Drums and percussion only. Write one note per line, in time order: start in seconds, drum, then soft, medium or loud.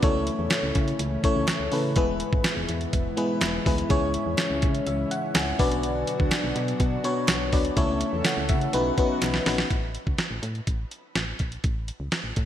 0.03 kick loud
0.03 closed hi-hat medium
0.27 closed hi-hat medium
0.51 snare loud
0.51 clap medium
0.51 closed hi-hat medium
0.51 tambourine medium
0.75 kick loud
0.75 closed hi-hat medium
0.88 closed hi-hat soft
0.99 closed hi-hat medium
1.24 kick medium
1.24 closed hi-hat medium
1.48 snare loud
1.48 clap medium
1.48 closed hi-hat loud
1.48 tambourine medium
1.72 open hi-hat medium
1.96 kick loud
1.96 closed hi-hat medium
2.20 closed hi-hat medium
2.33 kick loud
2.44 snare loud
2.44 clap medium
2.44 closed hi-hat medium
2.44 tambourine medium
2.69 closed hi-hat medium
2.81 closed hi-hat soft
2.93 kick loud
2.93 closed hi-hat medium
3.17 closed hi-hat medium
3.41 snare loud
3.41 clap medium
3.41 closed hi-hat loud
3.41 tambourine medium
3.66 kick medium
3.66 open hi-hat medium
3.78 closed hi-hat medium
3.90 kick loud
3.90 closed hi-hat medium
4.14 closed hi-hat medium
4.38 snare loud
4.38 clap medium
4.38 closed hi-hat medium
4.38 tambourine medium
4.62 kick loud
4.62 closed hi-hat medium
4.75 closed hi-hat soft
4.87 closed hi-hat medium
5.11 closed hi-hat medium
5.35 snare loud
5.35 clap medium
5.35 closed hi-hat loud
5.35 tambourine medium
5.59 kick loud
5.59 open hi-hat medium
5.72 closed hi-hat medium
5.83 closed hi-hat medium
6.07 closed hi-hat medium
6.20 kick medium
6.31 snare loud
6.31 clap medium
6.31 closed hi-hat medium
6.31 tambourine medium
6.56 closed hi-hat medium
6.68 closed hi-hat soft
6.80 kick loud
6.80 closed hi-hat medium
7.04 closed hi-hat medium
7.28 snare loud
7.28 clap medium
7.28 closed hi-hat loud
7.28 tambourine medium
7.52 kick loud
7.52 open hi-hat medium
7.65 closed hi-hat medium
7.77 kick loud
7.77 closed hi-hat medium
8.01 closed hi-hat medium
8.25 snare loud
8.25 clap medium
8.25 closed hi-hat medium
8.25 tambourine medium
8.49 kick loud
8.49 closed hi-hat medium
8.61 closed hi-hat soft
8.73 closed hi-hat medium
8.98 kick medium
8.98 closed hi-hat medium
9.22 snare medium
9.22 clap medium
9.22 closed hi-hat loud
9.34 snare medium
9.46 snare medium
9.46 open hi-hat medium
9.58 snare loud
9.70 kick loud
9.70 closed hi-hat medium
9.95 closed hi-hat medium
10.07 kick medium
10.18 snare loud
10.18 closed hi-hat medium
10.43 closed hi-hat medium
10.55 closed hi-hat soft
10.67 kick medium
10.67 closed hi-hat medium
10.91 closed hi-hat medium
11.15 snare medium
11.15 closed hi-hat medium
11.39 kick medium
11.39 closed hi-hat medium
11.52 closed hi-hat soft
11.64 kick loud
11.64 closed hi-hat medium
11.88 closed hi-hat medium
12.12 snare loud
12.12 closed hi-hat medium
12.36 kick loud
12.36 closed hi-hat medium